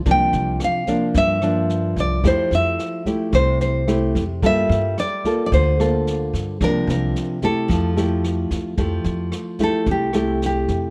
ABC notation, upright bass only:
X:1
M:4/4
L:1/8
Q:1/4=110
K:F
V:1 name="Upright bass" clef=bass
C,, C,, z2 G,,3 C,, | F,, F,, z2 C,,3 F,, | G,, G,, z2 D,,3 G,, | C,, C,, z2 F,,3 F,, |
F,, F,, z2 C,,3 F,, |]